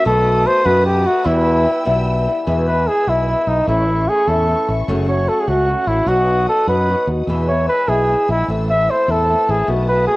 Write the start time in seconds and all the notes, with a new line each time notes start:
0.04 B1 B2 D#3 A3 B3 F#4 A4 B4 A5 D#6
0.44 D#3 A3 B3 F#4 C5
0.64 F#2 B2 D#3 A3 B3 F#4 B4
0.85 G4
1.04 A3 B3 F#4
1.24 E2 B2 E3 G3 B3 E4 G5 E6
1.64 E3 G3 B3 E4
1.85 B1 E2 B2 E3 G3 B3 E4
2.27 E3 G3 B3 E4
2.45 E2 B2 E3 G#3 B3 E4 B4 G#5 E6
2.67 E3 G#3 B3 E4 B4
2.87 E3 G#3 B3 E4 G#4
3.07 B1 E2 B2 E3 G#3 B3 E4
3.28 E3 G#3 B3 E4
3.47 B1 E3 G#3 B3 D#4 E4
3.67 A1 A2 E3 A3 C#4 E4 A4 E5 C#6
3.88 A3 C#4 E4
4.08 E3 A3 C#4 E4 G#4
4.27 E2 A2 E3 A3 C#4 E4 A4
4.48 E3 A3 C#4 E4
4.68 A1 A3 C#4 E4
4.87 F#1 F#2 C#3 F#3 A3 C#4 F#4 F#5
5.08 F#3 A3 C#4 F#4 C#5
5.28 F#3 A3 C#4 F#4 A4
5.40 G#4
5.48 C#2 F#2 C#3 F#3 A3 C#4 F#4
5.68 F#3 A3 C#4 F#4
5.87 A1 F#3 A3 C#4 E4 F#4
6.06 B1 B2 F#3 B3 D#4 F#4 B4 D#6
6.27 B3 D#4 F#4
6.47 F#3 B3 D#4 F#4 A4
6.67 F#2 B2 F#3 B3 D#4 F#4 B4
6.88 F#3 B3 D#4 F#4
7.07 D#2 B3 D#4 F#4
7.27 E2 B2 E3 G#3 B3 E4 B4 G#5 E6
7.48 E3 G#3 B3 E4 C#5
7.68 E3 G#3 B3 E4 B4
7.88 B1 E2 B2 E3 G#3 B3 E4 G#4
8.08 E3 G#3 B3 E4
8.28 A#1 E3 G#3 B3 E4
8.47 A1 A2 E3 A3 C4 E4 C5 A5
8.70 A3 C4 E4 E5
8.89 E3 A3 C4 E4 C5
9.08 E2 A2 E3 A3 C4 E4 A4
9.29 E3 A3 C4 E4
9.48 A1 A3 C4 E4 G#4
9.67 B1 B2 D#3 A3 B3 F#4 B4 D#6
9.88 A3 B3 F#4 B4
10.07 D#3 A3 B3 F#4 G#4